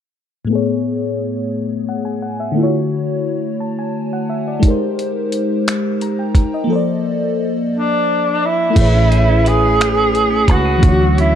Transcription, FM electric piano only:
0.45 2.50 A2 soft
0.45 2.51 A3 soft
0.50 2.52 B3 soft
0.50 2.54 G#4 soft
0.55 2.55 C#5 medium
1.89 2.04 F#5 soft
2.05 2.21 G#5 soft
2.22 2.38 F#5 medium
2.40 2.72 E5 medium
2.52 4.57 D3 medium
2.52 4.58 A3 medium
2.57 4.59 E4 soft
2.57 2.65 F4 soft
2.63 4.64 F#4 soft
2.63 3.61 C#5 medium
3.60 3.76 A5 soft
3.79 4.10 G#5 soft
4.13 4.28 F#5 medium
4.30 4.45 E5 medium
4.48 4.79 D5 medium
4.60 6.64 G#3 medium
4.60 6.65 D#4 medium
4.65 6.67 G4 medium
4.65 6.68 A#4 soft
4.71 6.69 C5 medium
6.02 6.18 A#5 soft
6.19 6.51 G5 medium
6.54 6.86 D#5 medium
6.64 8.71 F3 soft
6.64 8.70 A#3 medium
6.70 8.73 A4 medium
6.70 8.74 C5 soft
6.76 8.75 D5 medium
8.70 10.76 A3 soft
8.70 10.78 E4 soft
8.76 10.79 G#4 soft
8.76 10.80 B4 soft
8.81 10.82 C#5 medium
10.78 11.35 E3 medium
10.78 11.35 A3 soft
10.86 10.91 F4 soft
10.86 11.35 C#5 medium
10.92 11.35 F#4 soft

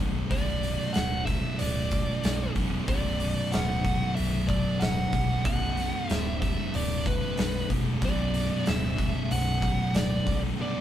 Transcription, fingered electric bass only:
0.00 0.22 B0 medium
0.31 0.76 B0 medium
0.95 1.41 D1 medium
1.60 2.06 D1 medium
2.24 2.47 B0 medium
2.56 2.79 E1 medium
2.88 3.34 B0 medium
3.54 3.99 D1 medium
4.18 4.63 B0 medium
4.82 5.04 D1 loud
5.13 5.36 B0 medium
5.45 5.91 B0 medium
6.10 6.55 D1 medium
6.75 7.20 D1 medium
7.39 7.61 B0 medium
7.70 7.93 E1 medium
8.02 8.47 B0 medium
8.68 9.12 D1 medium
9.31 9.76 B0 medium
9.95 10.17 D1 medium
10.27 10.50 B0 medium

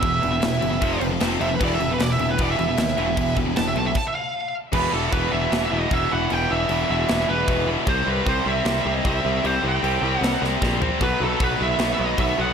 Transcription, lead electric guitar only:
0.00 1.06 E5 loud
1.41 1.50 E5 loud
1.55 1.63 B4 medium
1.64 1.72 D5 medium
1.75 1.82 E5 loud
1.85 1.92 E5 loud
1.92 2.01 B4 loud
2.01 2.12 D5 medium
2.12 2.19 E5 loud
2.21 2.30 E5 loud
2.31 2.40 B4 loud
2.42 2.50 D5 loud
2.51 2.58 E5 loud
2.59 3.35 E5 loud
3.57 3.66 A5 loud
3.68 3.77 E5 loud
3.77 3.86 A5 loud
3.86 3.96 E5 loud
3.97 4.06 A5 loud
4.08 4.15 E5 loud
4.15 4.54 F5 loud
4.74 4.93 B4 loud
4.94 5.12 A4 medium
5.13 5.34 B4 loud
5.32 5.65 E5 loud
5.66 5.78 E5 loud
5.78 5.94 D#5 medium
5.94 6.13 E5 loud
6.12 6.33 F#5 loud
6.33 6.52 G5 loud
6.51 6.90 E5 loud
6.91 7.27 E5 loud
7.30 7.66 B4 loud
7.89 8.09 C5 loud
8.09 8.29 B4 loud
8.29 8.48 C5 loud
8.48 8.80 E5 loud
8.82 8.94 E5 loud
8.94 9.07 D#5 medium
9.07 9.43 E5 loud
9.46 9.64 C5 loud
9.68 10.18 G5 medium
10.18 10.41 F#5 medium
11.03 11.23 B4 loud
11.25 11.43 A4 loud
11.43 11.62 B4 loud
11.63 11.92 E5 loud
11.93 12.05 E5 loud
12.06 12.19 D#5 loud
12.20 12.40 E5 loud
12.41 12.53 F#5 loud

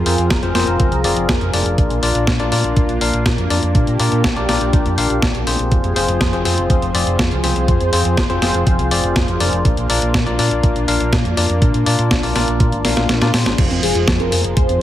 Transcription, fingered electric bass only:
0.06 0.15 F2 medium
0.18 0.27 F2 medium
0.31 0.39 F1 loud
0.43 0.52 F1 medium
0.55 0.64 F1 medium
0.68 0.76 F1 medium
0.80 0.88 F1 loud
0.92 1.01 C2 medium
1.04 1.13 F1 medium
1.17 1.25 F1 medium
1.29 1.38 F1 loud
1.41 1.50 F1 medium
1.54 1.62 F1 medium
1.66 1.75 F1 medium
1.78 1.87 A#1 loud
1.90 1.99 A#1 medium
2.03 2.11 A#1 medium
2.15 2.24 A#1 medium
2.27 2.36 A#2 loud
2.40 2.48 A#1 medium
2.52 2.61 A#2 medium
2.64 2.73 A#1 medium
2.77 2.85 A#1 medium
2.89 2.98 A#1 medium
3.01 3.10 A#1 medium
3.14 3.22 A#1 medium
3.26 3.34 A#2 medium
3.38 3.47 F2 medium
3.50 3.59 F2 medium
3.63 3.71 F2 medium
3.75 3.84 A#2 loud
3.87 3.96 A#2 medium
4.00 4.08 A#2 medium
4.12 4.21 A#2 medium
4.24 4.33 A#1 loud
4.36 4.45 A#1 medium
4.49 4.57 A#1 medium
4.61 4.70 A#1 medium
4.73 4.82 A#1 medium
4.86 4.94 F2 medium
4.98 5.07 A#1 medium
5.10 5.19 A#1 medium
5.22 5.31 A#1 loud
5.35 5.43 A#1 medium
5.47 5.56 A#1 medium
5.59 5.68 A#1 medium
5.72 5.80 F1 medium
5.84 5.93 F1 medium
5.96 6.05 F1 medium
6.08 6.17 F1 medium
6.21 6.29 F2 loud
6.33 6.42 F1 medium
6.45 6.54 F2 medium
6.58 6.66 F1 medium
6.70 6.79 F1 medium
6.82 6.91 F1 medium
6.95 7.03 F1 medium
7.07 7.16 F1 medium
7.19 7.28 F2 loud
7.32 7.40 C2 medium
7.44 7.52 C2 medium
7.56 7.65 C2 medium
7.68 7.77 F2 loud
7.81 7.89 F2 medium
7.93 8.02 F2 medium
8.05 8.14 F2 medium
8.17 8.26 F1 loud
8.30 8.39 F1 medium
8.42 8.51 F1 medium
8.54 8.63 F1 medium
8.67 8.75 F1 medium
8.79 8.88 C2 medium
8.91 9.00 F1 medium
9.04 9.12 F1 medium
9.16 9.25 F1 medium
9.28 9.37 F1 medium
9.41 9.49 F1 medium
9.53 9.62 F1 medium
9.65 9.74 A#1 loud
9.78 9.86 A#1 medium
9.90 9.98 A#1 medium
10.02 10.11 A#1 medium
10.14 10.23 A#2 loud
10.27 10.35 A#1 medium
10.39 10.48 A#2 medium
10.51 10.60 A#1 medium
10.63 10.72 A#1 medium
10.76 10.84 A#1 medium
10.88 10.97 A#1 medium
11.00 11.09 A#1 medium
11.13 11.21 A#2 medium
11.25 11.34 F2 medium
11.37 11.46 F2 medium
11.50 11.58 F2 medium
11.62 11.70 A#2 loud
11.74 11.83 A#2 medium
11.86 11.95 A#2 medium
11.99 12.07 A#2 medium
12.11 12.20 A#1 loud
12.23 12.32 A#1 medium
12.36 12.44 A#1 medium
12.48 12.57 A#1 medium
12.60 12.69 A#2 loud
12.73 12.81 G#1 medium
12.85 12.93 A#1 medium
12.97 13.06 A#1 medium
13.09 13.18 A#1 loud
13.22 13.30 A#2 medium
13.34 13.43 A#2 medium
13.46 13.55 G#1 medium
13.58 13.67 F1 loud
13.71 13.80 F1 medium
13.83 13.92 F1 medium
13.95 14.04 F1 medium
14.08 14.16 F2 loud
14.20 14.29 F1 medium
14.32 14.41 F2 medium
14.44 14.53 F1 medium
14.57 14.66 F1 medium
14.69 14.78 F1 medium

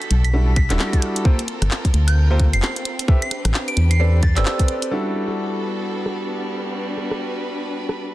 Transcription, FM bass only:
0.11 0.72 B1 medium
0.70 0.78 D1 medium
1.62 1.70 G1 loud
1.94 2.55 D2 medium
2.54 2.61 F1 medium
3.45 3.53 A1 loud
3.77 4.38 E2 medium
4.37 4.44 G1 medium

